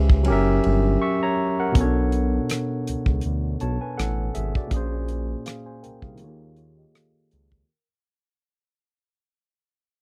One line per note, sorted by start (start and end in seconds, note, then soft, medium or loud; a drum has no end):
0.00 0.31 C#2 loud
0.00 0.21 C#3 medium
0.00 0.22 C#4 medium
0.00 0.23 G4 medium
0.00 0.25 B4 medium
0.00 0.29 E5 medium
0.10 kick loud
0.23 1.70 F#3 medium
0.23 1.71 C#4 medium
0.23 ride medium
0.28 0.60 F#1 loud
0.28 1.73 G4 medium
0.28 1.01 A#4 medium
0.32 1.01 E5 medium
0.64 0.97 G1 medium
0.64 ride soft
1.02 1.21 E5 medium
1.02 1.21 C#6 medium
1.23 1.58 C#5 medium
1.23 1.57 A#5 medium
1.60 1.94 A#4 medium
1.60 1.94 F#5 medium
1.72 2.40 B1 medium
1.72 4.66 B2 medium
1.72 4.67 B3 medium
1.72 kick loud
1.72 closed hi-hat medium
1.76 1.83 C#4 soft
1.76 3.58 A4 medium
1.81 4.71 D4 medium
1.81 3.59 C#5 medium
2.12 closed hi-hat soft
2.50 cross-stick loud
2.50 closed hi-hat medium
2.87 2.96 C#2 soft
2.87 closed hi-hat medium
3.06 3.21 C#2 medium
3.06 kick medium
3.21 3.56 D2 medium
3.21 closed hi-hat medium
3.60 3.79 B1 medium
3.60 3.80 C#5 soft
3.60 3.80 A5 medium
3.60 closed hi-hat soft
3.81 3.97 B4 soft
3.81 3.97 G#5 medium
3.97 4.30 A1 medium
3.97 4.33 A4 medium
3.97 4.32 F#5 medium
3.97 cross-stick medium
3.97 closed hi-hat medium
4.34 4.53 G#1 medium
4.34 4.54 G#4 soft
4.34 4.54 E5 medium
4.34 closed hi-hat medium
4.55 4.91 F#4 soft
4.55 4.90 D5 medium
4.55 kick medium
4.67 6.14 A#2 medium
4.67 6.16 A#3 medium
4.67 kick medium
4.67 closed hi-hat medium
4.71 5.36 A#1 loud
4.71 6.16 C#4 medium
4.71 5.45 G#4 medium
4.76 5.46 C5 medium
5.08 closed hi-hat soft
5.46 5.65 G#4 soft
5.46 5.65 F5 medium
5.46 cross-stick loud
5.46 closed hi-hat medium
5.66 5.82 C5 soft
5.66 5.82 G#5 medium
5.83 5.92 C2 soft
5.83 6.02 A#4 medium
5.83 6.02 G5 medium
5.83 closed hi-hat medium
6.02 6.24 C2 medium
6.02 6.39 G#4 soft
6.02 6.38 F5 medium
6.02 kick medium
6.15 7.62 D#3 medium
6.15 7.63 A#3 medium
6.15 closed hi-hat medium
6.20 6.85 D#2 medium
6.20 6.56 F4 medium
6.20 6.28 F#4 soft
6.24 6.56 C#5 medium
6.28 6.60 G4 medium
6.56 6.76 F4 soft
6.56 6.76 C#5 medium
6.56 closed hi-hat soft
6.78 6.94 G4 soft
6.78 6.93 D#5 medium
6.94 7.29 A4 soft
6.94 7.29 F5 medium
6.94 cross-stick medium
6.94 closed hi-hat medium
7.31 7.64 C#2 medium
7.31 7.50 C#5 soft
7.31 7.50 A5 medium
7.31 closed hi-hat soft
7.52 7.87 A#4 soft
7.52 kick medium